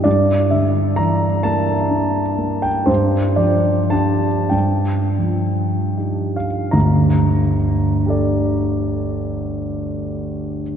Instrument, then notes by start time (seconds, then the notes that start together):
grand piano
0.04 G2 D5
0.50 D3 E5
0.96 E3 A#5
1.43 A#3 A5
1.90 D4
2.38 A#3
2.62 G5
2.86 G2 C5
3.36 F3 D5
3.90 D4 G4 A5
4.49 G2 G5
5.18 F3
5.97 D#4 G4
6.36 F5
6.71 G1 D2 A#5
8.06 G4 A4
8.10 D5